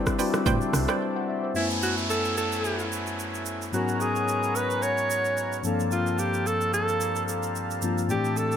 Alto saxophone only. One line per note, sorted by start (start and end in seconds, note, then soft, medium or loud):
1.56 1.68 E4 medium
1.83 1.95 F#4 medium
2.10 2.35 A4 loud
2.37 2.88 A4 medium
3.74 4.02 F#4 medium
4.01 4.57 G#4 medium
4.56 4.84 B4 medium
4.83 5.64 C#5 loud
5.92 6.21 F4 medium
6.19 6.48 G4 medium
6.47 6.73 A4 loud
6.74 7.24 A4 loud
8.10 8.39 G4 medium
8.37 8.57 A4 medium